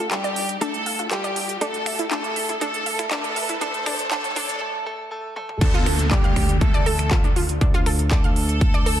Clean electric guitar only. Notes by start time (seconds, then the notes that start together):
0.11 G3 G4
0.61 A3 A4
1.11 G3 G4
1.61 A3 A4
2.11 A3 A4
2.61 A3 A4
3.11 A3 A4
3.61 A3 A4
3.86 A3 A4
4.11 A3 A4
4.36 A3 A4
4.61 A3 A4
4.86 A3 A4
5.11 A3 A4
5.36 A3 A4
5.61 A3 A4
6.11 G3 G4
6.61 A3 A4
8.11 A3 A4